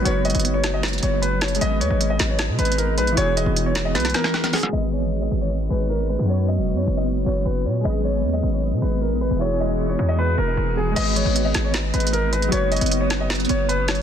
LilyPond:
<<
  \new Staff \with { instrumentName = "Grand piano" } { \time 4/4 \key gis \minor \tempo 4 = 154 cis''8 dis''8. cis''8 dis''16 r8 cis''8 b'8 cis''8 | dis''8 cis''8. dis''8 cis''16 r8 b'8 ais'8 b'8 | cis''8 dis''8. cis''8 dis''16 b'8 ais'4 gis'8 | dis''8 cis''8. dis''8 cis''16 r8 b'8 ais'8 b'8 |
cis''8 dis''8. cis''8 dis''16 r8 cis''8 b'8 cis''8 | dis''8 cis''8. dis''8 cis''16 r8 b'8 ais'8 b'8 | cis''8 dis''8. cis''8 dis''16 b'8 ais'4 gis'8 | dis''8 cis''8. dis''8 cis''16 r8 b'8 ais'8 b'8 |
cis''8 dis''8. cis''8 dis''16 r8 cis''8 b'8 cis''8 | }
  \new Staff \with { instrumentName = "Synth keys" } { \time 4/4 \key gis \minor <fis fis' b' cis''>1 | <gis gis' b' dis''>1 | <e e' fis' gis'>1 | <gis gis' b' dis''>2~ <gis gis' b' dis''>8 <gis gis' b' cis''>4. |
<fis fis' b' cis''>2~ <fis fis' b' cis''>8 <fis fis' b' cis''>4. | <gis gis' b' dis''>1 | <e e' fis' gis'>1 | <gis gis' b' dis''>1 |
<fis fis' b' cis''>1 | }
  \new Staff \with { instrumentName = "Ambient pad" } { \time 4/4 \key gis \minor b1~ | b1 | r1 | b1~ |
b1~ | b1~ | b1 | b1~ |
b1 | }
  \new Staff \with { instrumentName = "808-style bass" } { \clef bass \time 4/4 \key gis \minor fis,,8. fis,,4.~ fis,,16 fis,,4. | gis,,8 dis,16 gis,,8. gis,,8. b,16 gis,,4 ais,,16 gis,,16 | e,,8. e,,4~ e,,16 b,,8 r4. | gis,,4. gis,,4 gis,,4~ gis,,16 fis,16~ |
fis,8. e,,16. fis,16. fis,,4 fis,,8 fis,,8 ais,8 | gis,,4 dis,8 gis,,8. b,16 gis,,8. ais,,16 gis,,16 e,,16~ | e,,4. e,4 e,,8 e,,4 | gis,,8. gis,,8. gis,,4 gis,,4. |
fis,,8. fis,,4.~ fis,,16 fis,,4. | }
  \new DrumStaff \with { instrumentName = "Drums" } \drummode { \time 4/4 hh8 hh32 hh32 hh32 hh32 hh8 <hh sn>8 <hh sn>32 hh32 hh32 hh32 hh8 \tuplet 3/2 { hh16 r16 r16 <hh hho sn>16 hh16 hh16 } | hh8 hh8 hh8 <hh sn>8 \tuplet 3/2 { <hh sn>16 r16 r16 hh16 hh16 hh16 } hh8 hh16 hh16 | hh8 hh8 hh8 <hh sn>8 <hh sn>32 hh32 <hh sn>32 hh32 <hh sn>16 sn16 <hh sn>16 <hh sn>16 <hho sn>16 sn16 | r4 r4 r4 r4 |
r4 r4 r4 r4 | r4 r4 r4 r4 | r4 r4 r4 r4 | <cymc hh>8 hh8 hh8 <hh sn>8 \tuplet 3/2 { <hh sn>16 r16 r16 hh16 hh16 hh16 } hh8 hh16 hh16 |
hh8 hh32 hh32 hh32 hh32 hh8 <hh sn>8 <hh sn>32 hh32 hh32 hh32 hh8 \tuplet 3/2 { hh16 r16 r16 <hh hho sn>16 hh16 r16 } | }
>>